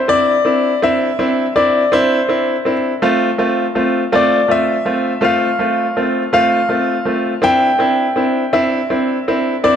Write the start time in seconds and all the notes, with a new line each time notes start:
Already playing: C5
0.08 C4 D4 E4 D5
0.45 C4 D4 E4
0.82 C4 D4 E4 E5
1.19 C4 D4 E4
1.56 C4 D4 E4 D5
1.92 C4 D4 E4 C5
2.29 C4 D4 E4
2.65 C4 D4 E4
3.02 A3 C4 F4
3.38 A3 C4 F4
3.75 A3 C4 F4
4.12 A3 C4 F4 D5
4.48 A3 C4 F4 E5
4.85 A3 C4 F4
5.21 A3 C4 F4 F5
5.59 A3 C4 F4
5.97 A3 C4 F4
6.33 A3 C4 F4 F5
6.69 A3 C4 F4
7.05 A3 C4 F4
7.42 C4 D4 E4 G5
7.79 C4 D4 E4
8.16 C4 D4 E4
8.53 C4 D4 E4 E5
8.90 C4 D4 E4
9.28 C4 D4 E4
9.64 C4 D4 E4 D5